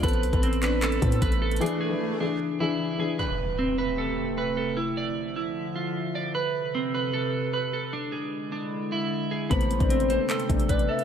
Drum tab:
HH |xxx-x-x-x-x-x---x-x-x-x-x-x---xx|xx------------------------------|--------------------------------|--------------------------------|
CP |------------x---x---------------|--------------------------------|--------------------------------|--------------------------------|
BD |o-----o-------------o---o-------|--------------------------------|--------------------------------|--------------------------------|

HH |--------------------------------|--------------------------------|x-x-x-x-x-x-x---x-x-x-x-x-x---x-|
CP |--------------------------------|--------------------------------|----------------x---------------|
BD |--------------------------------|--------------------------------|o-----o-------------o---o-------|